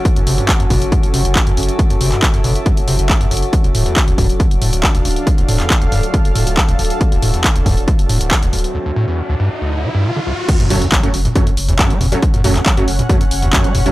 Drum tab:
CC |--------------------------------|--------------------------------|--------------------------------|--------------------------------|
HH |x-x-o-x-x-x-o-x-x-x-o-x-x-x-oxx-|x-x-o-x-x-x-o-x-x-x-o-x-x-x-oxx-|x-x-o-x-x-x-o-x-x-x-o-x-x-x-oxx-|x-x-o-x-x-x-o-x-x-x-o-x-x-x-oxx-|
CP |--------x---------------x-------|------x-x---------------x-------|--------x---------------x-------|------x-x---------------x-------|
T2 |--------------------------------|--------------------------------|--------------------------------|--------------------------------|
BD |o-------o---o---o-------o-------|o-------o-------o-------o-------|o-------o---o---o-------o-------|o-------o-------o-------o-------|

CC |--------------------------------|--------------------------------|x-------------------------------|--------------------------------|
HH |x-x-o-x-x-x-o-x-x-x-o-x-x-x-oxx-|--------------------------------|x-x-o-x-x-x-o-x-x-x-o-x-x-x-o-x-|x-x-o-x-x-x-o-x-x-x-o-x-x-x-o-x-|
CP |--------x---------------x-------|--------------------------------|--------x---------------x-------|------x-x---------------x-------|
T2 |--------------------------------|--------------------------------|--o-o---------o-------------o---|--o-o---------o-------------o---|
BD |o-------o---o---o-------o-------|--------------------------------|o-------o-------o-------o-------|o-------o-------o-------o-------|